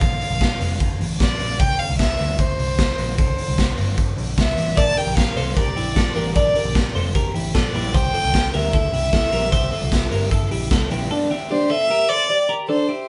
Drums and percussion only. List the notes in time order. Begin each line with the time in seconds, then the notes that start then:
0.01 kick, closed hi-hat
0.21 open hi-hat
0.41 kick, snare, closed hi-hat
0.61 open hi-hat
0.80 kick, closed hi-hat
1.01 open hi-hat
1.20 kick, snare, closed hi-hat
1.40 open hi-hat
1.59 kick, closed hi-hat
1.80 open hi-hat
1.99 kick, snare, closed hi-hat
2.18 open hi-hat
2.38 kick, closed hi-hat
2.59 open hi-hat
2.79 kick, snare, closed hi-hat
2.98 open hi-hat
3.18 kick, closed hi-hat
3.38 open hi-hat
3.58 kick, snare, closed hi-hat
3.78 open hi-hat
3.98 kick, closed hi-hat
4.18 open hi-hat
4.38 kick, snare, closed hi-hat
4.58 open hi-hat
4.77 kick, closed hi-hat
4.97 open hi-hat
5.17 kick, snare, closed hi-hat
5.37 open hi-hat
5.57 kick, closed hi-hat
5.77 open hi-hat
5.96 kick, snare, closed hi-hat
6.15 open hi-hat
6.35 kick, closed hi-hat
6.55 open hi-hat
6.75 kick, snare, closed hi-hat
6.95 open hi-hat
7.15 kick, closed hi-hat
7.35 open hi-hat
7.55 kick, snare, closed hi-hat
7.74 open hi-hat
7.94 kick, closed hi-hat
8.14 open hi-hat
8.34 kick, snare, closed hi-hat
8.54 open hi-hat
8.73 kick, closed hi-hat
8.94 open hi-hat
9.13 kick, snare, closed hi-hat
9.32 open hi-hat
9.52 kick, closed hi-hat
9.72 open hi-hat
9.92 kick, snare, closed hi-hat
10.11 open hi-hat
10.31 kick, closed hi-hat
10.51 open hi-hat
10.71 kick, snare, closed hi-hat
10.90 open hi-hat